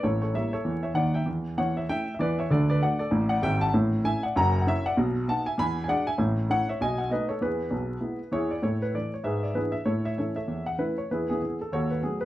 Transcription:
X:1
M:4/4
L:1/16
Q:"Swing" 1/4=196
K:D
V:1 name="Grand piano"
[Ac]2 [Ac]2 [ce]2 [Ac]4 [ce]2 [df]2 [eg]2 | z4 [cf]2 [ce]2 [eg]3 e [Bd]2 [ce]2 | [Ad]2 [Bd]2 [df]2 [Ad]4 [df]2 [eg]2 [fa]2 | [K:A] z4 [eg]2 [df]2 [f_b]3 f [ce]2 [df]2 |
z4 [fa]2 [eg]2 [gb]3 g [df]2 [eg]2 | z4 [cf]2 [ce]2 [^dg]2 [df]2 [Bd]2 [Ac]2 | [GB]12 [EGc]2 d2 | [EAc]2 B2 d2 c2 [GBe]2 d2 [EGB]2 e2 |
[EAc]2 e2 [EAc]2 [Ace]4 f2 [EB]2 c2 | [EGB]2 [B,EG]4 A2 [FAc]2 B2 G2 B2 |]
V:2 name="Grand piano" clef=bass
[A,,,A,,]4 [G,_B,E]4 [E,,E,]4 [_E,,_E,]4 | [E,,E,]4 [E,,E,]4 [A,CE]4 [E,,E,]4 | [D,,D,]4 [A,DF]4 [A,,,A,,]4 [^G,,,^G,,]4 | [K:A] [A,,,A,,]4 [A,CE]4 [F,,,F,,]4 [CEF]4 |
[B,,,B,,]4 [B,^DF]4 [E,,E,]4 [G,=DF]4 | [A,,,A,,]4 [A,CE]4 [B,,,B,,]4 [A,B,^D]4 | [E,,E,]4 [B,,,B,,]4 [G,B,E]4 [E,,E,]4 | A,,4 [E,A,E]4 G,,4 [E,B,D]4 |
A,,4 [E,A,C]4 E,,4 [E,A,C]4 | E,,4 [E,B,]4 ^D,,4 [F,A,B,]4 |]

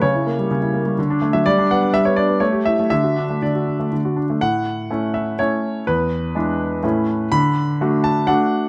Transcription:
X:1
M:3/4
L:1/16
Q:1/4=124
K:D
V:1 name="Grand piano"
c8- c3 e | d2 f2 e c d2 c2 e2 | e4 d6 z2 | [K:A] f6 e2 c4 |
B8- B2 z2 | b6 a2 f4 |]
V:2 name="Grand piano"
C, E ^A, G, C, E A, G, D, D =A, F, | G, D B, D G, B, D B, A, G E A, | D, F D A, D, F D A, D, F D A, | [K:A] A,,4 [A,CE]4 [A,CE]4 |
E,,4 [G,DE]4 [A,,A,CE]4 | D,4 [A,DF]4 [A,DF]4 |]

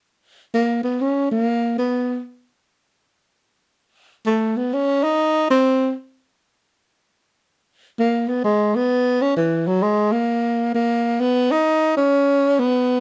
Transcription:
X:1
M:4/4
L:1/8
Q:"Swing" 1/4=129
K:B
V:1 name="Tenor saxophone"
z2 A, B, C A,2 B,- | B, z6 z | z2 =A, B, C D2 ^B,- | ^B, z6 z |
z2 A, B, G, B,2 C | E, F, G, A,3 A,2 | B, D2 C3 B,2 |]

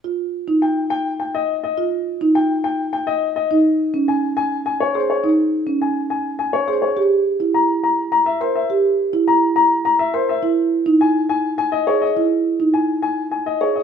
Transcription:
X:1
M:3/4
L:1/16
Q:1/4=104
K:Ebmix
V:1 name="Grand piano"
z4 g z g z g e z e | z4 g z g z g e z e | z4 a z a z a d c d | z4 a z a z a d c d |
z4 b z b z b =e c e | z4 b z b z b =e c e | z4 ^g z g z g e ^c e | z4 ^g z g z g e ^c e |]
V:2 name="Marimba"
F z2 E z8 | F z2 E z8 | E z2 D z6 A z | E z2 D z6 A z |
G z2 =E z6 B z | G z2 =E z6 B z | =E z2 _E z6 ^G z | =E z2 _E z6 ^G z |]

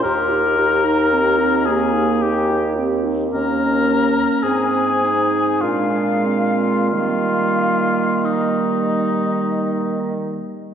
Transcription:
X:1
M:3/4
L:1/16
Q:1/4=52
K:Eb
V:1 name="Flute"
b6 a2 g2 z2 | b4 a4 f4 | f4 e6 z2 |]
V:2 name="Oboe"
B6 A2 G2 z2 | B4 A4 F4 | F4 E6 z2 |]
V:3 name="French horn"
G E G E G E G E G E G E | _D4 C4 A,4 | G,4 G,6- G, z |]
V:4 name="Clarinet"
G2 E2 C2 B,2 E2 C2 | B,4 C2 E2 D2 C2 | B,8- B,2 z2 |]
V:5 name="Bassoon" clef=bass
E,,12 | E,,4 A,,4 B,,4 | E,8- E,2 z2 |]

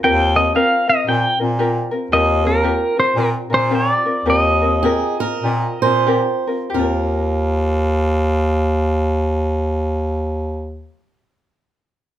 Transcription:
X:1
M:4/4
L:1/8
Q:"Swing" 1/4=98
K:Eb
V:1 name="Pedal steel guitar"
g e f e g z3 | e B2 c B c d2 | e6 z2 | z8 |
z8 |]
V:2 name="Steel-string acoustic guitar"
z8 | z8 | z2 A B2 c3 | B8- |
B8 |]
V:3 name="Ukulele"
[CFGB] [CFB] [CFGB] [CFB] [CFGB] [CFB] [CFGB] [CFB] | [CFGB] [CFB] [CFGB] [CFB] [CFGB] [CFB] [CFGB] [CFB] | [CFGB] [CFB] [CFGB] [CFB] [CFGB] [CFB] [CFGB] [CFB] | [CFGB]8- |
[CFGB]8 |]
V:4 name="Bass clarinet" clef=bass
E,,3 z B,, B,,3 | E,,4 B,, B,,3 | E,,4 B,, B,,2 z | E,,8- |
E,,8 |]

